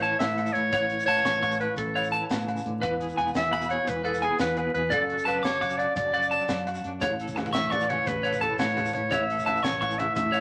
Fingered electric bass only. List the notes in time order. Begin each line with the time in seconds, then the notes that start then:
0.21 A2
0.56 A2
0.73 A1
1.07 A1
1.24 A1
1.78 A1
2.30 A2
2.66 A2
2.84 E1
3.17 E1
3.35 E1
3.88 E1
4.40 E2
4.74 E2
4.92 F#1
5.27 F#1
5.44 F#1
5.97 F#1
6.49 F#2
6.84 F#2
7.02 A1
7.37 A1
7.56 A1
8.07 A1
8.61 A2
8.95 A2
9.12 A1
9.47 A1
9.64 A1
10.17 A1